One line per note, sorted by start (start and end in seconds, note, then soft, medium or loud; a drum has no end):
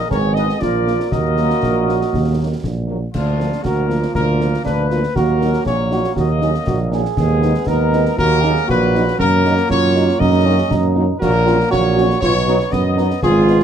0.00 0.60 D#3 medium
0.08 0.52 G#1 medium
0.08 0.60 B3 medium
0.08 0.56 G#4 loud
0.08 0.15 A#4 medium
0.08 0.35 C#5 loud
0.08 concert bass drum medium
0.08 snare medium
0.34 0.45 G#3 medium
0.34 0.44 B3 medium
0.34 0.44 D#4 medium
0.34 0.43 B4 medium
0.34 0.59 D#5 loud
0.34 snare medium
0.49 snare soft
0.60 0.99 A#1 medium
0.60 1.07 F3 medium
0.60 1.08 A#3 medium
0.60 1.12 F4 medium
0.60 1.08 A#4 medium
0.60 1.10 D5 medium
0.60 concert bass drum medium
0.60 snare medium
0.86 0.95 F3 medium
0.86 0.95 A#3 medium
0.86 snare soft
1.00 snare medium
1.09 1.53 D#2 medium
1.09 2.87 F#3 medium
1.09 2.83 A#3 medium
1.09 2.88 F#4 medium
1.09 2.59 A#4 medium
1.09 2.58 D#5 loud
1.09 concert bass drum medium
1.09 snare medium
1.36 1.45 F#3 medium
1.36 1.45 A#3 medium
1.36 snare medium
1.50 snare medium
1.62 2.04 A#1 medium
1.62 concert bass drum medium
1.62 snare medium
1.86 1.95 F#3 soft
1.86 1.95 A#3 medium
1.86 snare soft
2.01 snare medium
2.13 2.54 D#2 medium
2.13 concert bass drum medium
2.13 snare medium
2.37 2.46 F#3 medium
2.37 2.46 A#3 medium
2.64 3.05 A#1 medium
2.64 concert bass drum medium
2.64 snare medium
2.88 2.97 F#3 medium
2.88 2.97 A#3 medium
3.13 3.56 D2 medium
3.13 5.12 F3 medium
3.13 5.12 A#3 medium
3.13 3.60 D4 medium
3.13 3.60 F4 medium
3.13 concert bass drum medium
3.13 snare medium
3.13 crash soft
3.38 3.47 F3 medium
3.38 3.47 A#3 medium
3.38 snare medium
3.52 snare medium
3.62 4.06 D2 medium
3.62 3.90 F#4 medium
3.62 4.12 A#4 medium
3.62 concert bass drum medium
3.62 snare medium
3.88 3.98 F3 medium
3.88 3.98 A#3 medium
3.88 4.64 F4 medium
3.88 snare medium
4.02 snare medium
4.13 4.56 D2 medium
4.13 4.61 A#4 loud
4.13 concert bass drum medium
4.13 snare medium
4.39 4.48 F3 medium
4.39 4.48 A#3 medium
4.39 snare medium
4.54 snare soft
4.64 5.07 D2 medium
4.64 4.88 D4 medium
4.64 5.11 B4 medium
4.64 concert bass drum medium
4.64 snare medium
4.89 4.99 F3 medium
4.89 4.99 A#3 medium
4.89 5.01 F4 medium
4.89 snare soft
5.03 snare medium
5.15 5.57 D#2 medium
5.15 7.13 F#3 medium
5.15 7.14 A#3 medium
5.15 5.62 F#4 medium
5.15 5.65 A#4 loud
5.15 concert bass drum medium
5.15 snare medium
5.40 5.49 F#3 medium
5.40 5.50 A#3 medium
5.40 5.49 D#4 medium
5.40 snare medium
5.53 snare medium
5.64 6.08 A#1 medium
5.64 5.77 G#4 medium
5.64 6.12 C#5 loud
5.64 concert bass drum medium
5.64 snare medium
5.90 6.00 F#3 medium
5.90 6.00 A#3 medium
5.90 6.00 D#4 medium
5.90 6.15 F#4 medium
5.90 snare soft
6.04 snare medium
6.16 6.58 D#2 medium
6.16 6.27 F#4 medium
6.16 6.92 D#5 loud
6.16 concert bass drum medium
6.16 snare medium
6.41 6.50 F#3 medium
6.41 6.50 A#3 medium
6.41 6.50 D#4 medium
6.41 6.53 G#4 medium
6.41 snare medium
6.54 snare soft
6.67 7.09 A#1 medium
6.67 6.78 F#4 medium
6.67 concert bass drum medium
6.67 snare medium
6.92 7.01 F#3 medium
6.92 7.01 A#3 medium
6.92 7.01 D#4 medium
6.92 7.64 G#4 medium
6.92 snare soft
7.05 snare medium
7.17 7.54 D#2 medium
7.17 8.14 G#3 medium
7.17 8.19 B3 medium
7.17 7.64 G#4 loud
7.17 concert bass drum medium
7.17 snare medium
7.17 crash soft
7.42 7.51 G#3 medium
7.42 7.51 B3 medium
7.42 7.51 D#4 medium
7.42 snare medium
7.54 snare medium
7.67 8.09 D#2 medium
7.67 8.19 D#4 medium
7.67 8.17 A#4 medium
7.67 concert bass drum medium
7.67 snare medium
7.93 8.02 G#3 medium
7.93 8.02 B3 medium
7.93 8.02 D#4 medium
7.93 snare medium
8.05 snare medium
8.17 8.60 D#2 medium
8.17 9.19 F#3 medium
8.17 9.16 A#3 medium
8.17 8.44 F#4 medium
8.17 8.65 A#4 loud
8.17 concert bass drum medium
8.17 snare medium
8.42 8.53 F#3 medium
8.42 8.53 A#3 medium
8.42 8.52 D#4 medium
8.42 8.67 G#4 medium
8.42 snare medium
8.56 snare medium
8.68 9.11 A#1 medium
8.68 9.37 F#4 medium
8.68 9.15 B4 loud
8.68 concert bass drum medium
8.68 snare medium
8.94 9.03 F#3 medium
8.94 9.03 A#3 medium
8.94 9.03 D#4 medium
8.94 snare medium
9.08 snare medium
9.19 9.61 F#2 medium
9.19 11.05 F#3 medium
9.19 11.05 A#3 medium
9.19 9.66 A#4 loud
9.19 concert bass drum medium
9.19 snare medium
9.44 9.54 F#3 medium
9.44 9.53 A#3 medium
9.44 9.54 D#4 medium
9.44 snare medium
9.57 snare medium
9.69 10.11 F#2 medium
9.69 10.21 F4 medium
9.69 10.16 C#5 loud
9.69 concert bass drum medium
9.69 snare medium
9.95 10.04 F#3 medium
9.95 10.04 A#3 medium
9.95 10.04 D#4 medium
9.95 snare medium
10.09 snare medium
10.18 10.62 F#2 loud
10.18 10.47 D#4 medium
10.18 10.95 D#5 loud
10.18 concert bass drum medium
10.18 snare medium
10.45 10.54 F#3 medium
10.45 10.54 A#3 medium
10.45 10.72 C#4 medium
10.45 10.54 D#4 medium
10.69 11.12 F#2 medium
10.69 11.19 D#4 medium
10.69 concert bass drum medium
10.69 snare medium
10.96 11.05 F#3 medium
10.96 11.05 A#3 medium
10.96 11.05 D#4 medium
11.20 11.63 A#1 loud
11.20 13.19 F#3 medium
11.20 12.18 A#3 medium
11.20 11.31 F#4 loud
11.20 11.67 A#4 loud
11.20 concert bass drum medium
11.20 snare medium
11.20 crash medium
11.46 11.55 F#3 medium
11.46 11.55 C#4 medium
11.46 11.57 F4 medium
11.46 11.55 F#4 medium
11.46 snare medium
11.60 snare medium
11.70 12.13 A#1 medium
11.70 12.18 F#4 medium
11.70 12.18 C#5 loud
11.70 concert bass drum medium
11.70 snare medium
11.96 12.05 F#3 medium
11.96 12.05 C#4 medium
11.96 12.05 F#4 medium
11.96 snare medium
12.10 snare medium
12.21 12.64 B1 medium
12.21 13.64 B3 medium
12.21 12.34 F4 loud
12.21 12.68 C#5 loud
12.21 concert bass drum medium
12.21 snare medium
12.46 12.55 F#3 medium
12.46 12.56 B3 medium
12.46 12.58 D#4 medium
12.46 12.56 F#4 medium
12.46 snare medium
12.60 snare medium
12.71 13.14 F#2 medium
12.71 12.83 B3 medium
12.71 13.22 D#5 loud
12.71 concert bass drum medium
12.71 snare medium
12.97 13.06 F#3 medium
12.97 13.06 B3 medium
12.97 13.09 D#4 medium
12.97 13.06 F#4 medium
12.97 snare medium
13.10 snare medium
13.22 13.64 G#1 medium
13.22 13.64 F3 medium
13.22 13.64 F4 loud
13.22 13.64 G#4 loud
13.22 concert bass drum medium
13.22 snare medium
13.47 13.56 G#3 medium
13.47 13.56 B3 medium
13.47 13.56 F4 medium
13.47 snare medium
13.60 snare medium